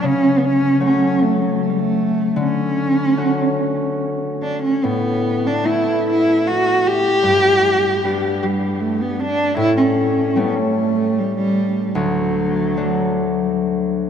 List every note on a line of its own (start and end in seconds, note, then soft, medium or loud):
0.00 2.44 C#3 medium
0.00 0.10 D3 soft
0.00 0.10 F#3 soft
0.00 1.60 B3 soft
0.00 0.07 D4 medium
0.06 0.40 C#4 medium
0.38 0.47 B3 medium
0.45 0.82 C#4 loud
0.80 2.44 F#3 soft
0.80 3.16 A3 soft
0.80 2.42 C#4 medium
0.85 1.24 C#4 medium
1.22 1.43 A3 medium
1.41 1.64 F#3 medium
1.62 1.71 A3 medium
1.69 1.80 G3 medium
1.79 2.42 A3 medium
2.36 4.88 D3 medium
2.43 3.99 C#4 medium
3.17 5.63 A3 soft
3.17 6.07 C#4 soft
3.17 5.61 F#4 soft
4.42 4.61 D4 medium
4.62 4.85 C#4 medium
4.84 7.28 A2 medium
4.84 5.48 B3 medium
5.46 5.67 D4 medium
5.64 8.97 A3 soft
5.64 8.04 B3 soft
5.64 8.26 E4 soft
5.64 6.06 E4 medium
6.10 6.49 E4 medium
6.47 6.89 F#4 medium
6.87 8.44 G4 loud
7.23 9.62 G2 medium
8.04 9.62 G3 soft
8.04 11.15 B3 soft
8.04 10.43 D4 soft
8.43 8.82 G3 medium
8.80 9.02 A3 medium
9.01 9.21 B3 medium
9.20 9.57 D4 loud
9.57 12.00 A2 medium
9.57 9.76 E4 loud
9.77 10.30 C#4 medium
10.30 10.39 C#4 medium
10.36 12.00 G3 soft
10.36 12.77 A3 soft
10.36 10.59 B3 medium
10.36 12.01 C#4 medium
10.58 11.20 A3 medium
11.19 11.36 G3 medium
11.36 11.97 G3 medium
11.95 14.10 D2 medium
11.95 13.58 F#3 medium
12.77 14.10 F#3 soft
12.77 14.10 A3 soft
12.77 14.10 D4 soft